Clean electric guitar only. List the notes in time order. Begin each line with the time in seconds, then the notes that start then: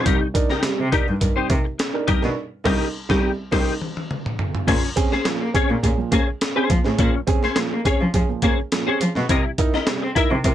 0.05 D#4 G4 A#4
0.21 muted clean electric guitar stroke
0.35 muted clean electric guitar stroke
0.50 D#4 G4 A#4
0.63 muted clean electric guitar stroke
0.78 muted clean electric guitar stroke
0.92 D#4 G4 A#4
1.07 muted clean electric guitar stroke
1.21 muted clean electric guitar stroke
1.36 D#4 G4 C5
1.49 muted clean electric guitar stroke
1.64 muted clean electric guitar stroke
1.79 muted clean electric guitar stroke
1.94 muted clean electric guitar stroke
2.07 D#4 G4 A#4
2.23 muted clean electric guitar stroke
2.65 D#4 G4 A#4
3.10 D#4 G4 A#4
3.52 D#4 G4 C5
4.68 C#4 G#4 C5
4.83 muted clean electric guitar stroke
4.96 muted clean electric guitar stroke
5.12 C#4 G#4 C5
5.41 muted clean electric guitar stroke
5.55 C#4 G#4 C#5
5.71 muted clean electric guitar stroke
5.84 muted clean electric guitar stroke
6.13 C#4 G#4 C5
6.28 muted clean electric guitar stroke
6.42 muted clean electric guitar stroke
6.56 C#4 G#4 C5
6.70 muted clean electric guitar stroke
6.86 muted clean electric guitar stroke
6.99 C#4 G#4 C5
7.15 muted clean electric guitar stroke
7.28 muted clean electric guitar stroke
7.44 C#4 G#4 C5
7.73 muted clean electric guitar stroke
7.85 C#4 G#4 C#5
8.01 muted clean electric guitar stroke
8.14 muted clean electric guitar stroke
8.43 C#4 G#4 C5
8.59 muted clean electric guitar stroke
8.72 muted clean electric guitar stroke
8.87 C#4 G#4 C5
9.00 muted clean electric guitar stroke
9.16 muted clean electric guitar stroke
9.30 E4 A#4 D#5
9.45 muted clean electric guitar stroke
9.59 muted clean electric guitar stroke
9.74 E4 A#4 D#5
10.02 muted clean electric guitar stroke
10.15 E4 A#4 E5
10.31 muted clean electric guitar stroke
10.44 muted clean electric guitar stroke